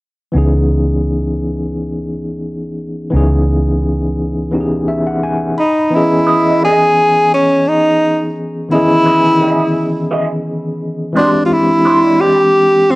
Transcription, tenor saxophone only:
5.59 D#4
5.94 E4
6.64 G#4
7.34 C#4
7.68 D#4
8.72 E4
11.17 D4
11.45 F4
11.53 E4
12.21 G4
12.91 C4

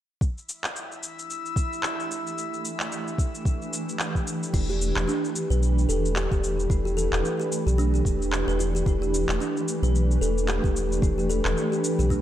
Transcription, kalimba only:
4.54 E4
4.69 G4
5.08 D4
5.50 B4
5.89 A4
6.16 G4
6.32 G4
6.70 E4
6.85 G4
6.97 A4
7.40 G4
7.67 G4
7.78 D4
7.94 G4
8.48 B4
8.59 E4
8.75 G4
8.86 E4
9.02 G4
9.40 D4
9.83 B4
10.21 A4
10.48 G4
10.64 G4
11.02 E4
11.18 G4
11.29 A4
11.72 G4
11.99 G4
12.10 D4

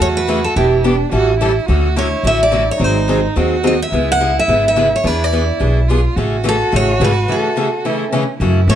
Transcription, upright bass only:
0.00 E2
0.56 E1
1.12 A1
1.69 D2
2.23 A1
2.80 G#1
3.36 D#2
3.92 C#2
4.48 G#1
5.04 E2
5.60 B1
6.16 A1
6.73 A1
7.00 G#1
8.40 F#2
8.67 A2

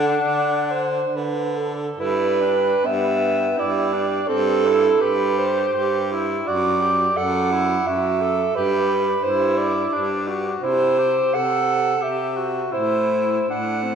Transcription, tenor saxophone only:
Already playing: D4
1.99 E4
2.41 D4
2.84 B3
3.58 E4
3.93 D4
4.29 C4
4.66 E4
5.01 G4
5.74 G4
6.12 E4
6.47 F#4
6.81 G4
7.17 A4
7.51 E4
7.87 F#4
8.21 A4
8.56 G4
9.23 E4
9.93 D4
10.27 F#4
10.63 E4
10.98 G4
11.35 A4
12.01 G4
12.37 F#4
12.72 E4
13.48 D4
13.83 C4

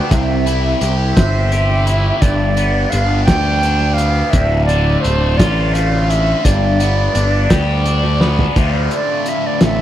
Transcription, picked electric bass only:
0.11 C2
0.81 C2
1.17 G1
2.22 G1
2.93 G1
3.28 D2
4.34 D1
5.05 D1
5.39 A1
6.45 G1
7.15 G1
7.51 D2
8.56 D2
9.63 A1

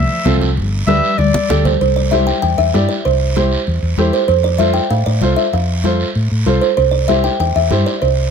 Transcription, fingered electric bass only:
0.26 C2
0.57 G1
0.87 D2
1.19 D2
1.50 D2
1.81 C2
2.43 E2
2.58 E2
2.74 G2
3.06 C2
3.68 E2
3.83 E2
3.98 E2
4.29 F2
4.91 A2
5.07 A2
5.22 C2
5.53 F2
6.16 A2
6.32 A2
6.47 C2
6.78 C2
7.40 E2
7.56 E2
7.71 G2
8.02 C2

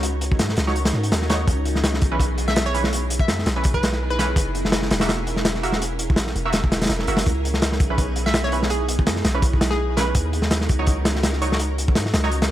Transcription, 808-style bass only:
Already playing: C#2
0.39 G#2
0.57 C#2
0.93 G#2
1.12 D#2
1.48 C#2
2.02 B1
3.28 F#2
3.46 B1
4.36 F#1
4.91 E1
6.18 A#1
6.36 E1
6.90 E1
7.08 F#1
7.27 C#2
7.80 B1
9.07 F#2
9.25 B1
10.15 D#2
10.69 C#2
11.96 G#2
12.14 C#2

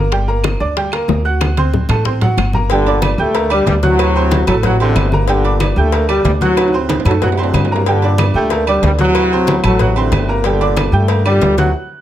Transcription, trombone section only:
2.71 G2 A#2 D3
3.19 D3 A3
3.52 G3
3.67 G3
3.83 A2 C3 F#3
4.48 F#3
4.64 A2 C3 F#3
4.80 F#2 A2 D3
5.28 G2 A#2 D3
5.76 D3 A3
6.09 G3
6.25 G3
6.41 A2 C3 F#3
7.06 F#3
7.22 A2 C3 F#3
7.39 A2 D3 F#3
7.88 G2 A#2 D3
8.35 D3 A3
8.68 G3
8.84 G3
9.00 A2 C3 F#3
9.65 F#3
9.81 A2 C3 F#3
9.98 F#2 A2 D3
10.46 G2 A#2 D3
10.94 D3 A3
11.26 A#2 D3 G3
11.58 A2 C3 F#3

